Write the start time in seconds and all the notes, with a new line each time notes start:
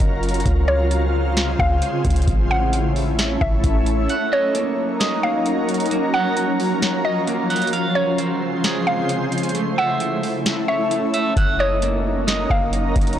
Already playing: F#3 C#4 F4 A#4
0.00 F#1, kick, closed hi-hat
0.23 closed hi-hat
0.29 closed hi-hat
0.34 closed hi-hat
0.40 closed hi-hat
0.46 C#2 C#3 G#3 C4, kick, closed hi-hat
0.68 C#5
0.91 closed hi-hat
1.37 snare, closed hi-hat
1.59 C#2 F5, kick
1.82 closed hi-hat
2.05 C#2, kick, closed hi-hat
2.10 closed hi-hat
2.16 closed hi-hat
2.22 closed hi-hat
2.27 A1 A3 C#4 E4, kick, closed hi-hat
2.51 F#5
2.73 closed hi-hat
2.96 open hi-hat
3.19 snare, closed hi-hat
3.41 A1 E5, kick
3.64 A1, kick, closed hi-hat
3.86 closed hi-hat
4.09 F#3 C#4 D#4 A#4 F#5, closed hi-hat
4.32 C#5 D#5
4.55 A#3, closed hi-hat
5.00 D#5, snare, closed hi-hat
5.23 A#3 F5
5.46 closed hi-hat
5.69 closed hi-hat
5.74 closed hi-hat
5.80 closed hi-hat
5.86 closed hi-hat
5.91 F3 A#3, closed hi-hat
6.14 F#5
6.37 closed hi-hat
6.60 open hi-hat
6.82 snare, closed hi-hat
7.05 D#5
7.27 A#3, closed hi-hat
7.50 F#5, closed hi-hat
7.56 closed hi-hat
7.62 closed hi-hat
7.67 closed hi-hat
7.73 C#3 G#3 C5 F5, closed hi-hat
7.95 C#4 C#5
8.18 C5, closed hi-hat
8.64 G#4, snare, closed hi-hat
8.86 C4 F5
9.09 closed hi-hat
9.32 closed hi-hat
9.38 closed hi-hat
9.43 closed hi-hat
9.49 closed hi-hat
9.55 A3 C#4 E4, closed hi-hat
9.78 E5 F#5
10.00 closed hi-hat
10.23 open hi-hat
10.46 snare, closed hi-hat
10.68 C#5 E5
10.91 A3, closed hi-hat
11.14 E5, closed hi-hat
11.36 F#1 F#3 D#4 A#4 F#5, kick, closed hi-hat
11.59 C#5 D#5
11.82 A#3, closed hi-hat
12.27 D#5, snare, closed hi-hat
12.50 F#1 A#3 F5, kick
12.73 closed hi-hat
12.96 F#1, kick, closed hi-hat
13.01 closed hi-hat
13.07 closed hi-hat
13.13 closed hi-hat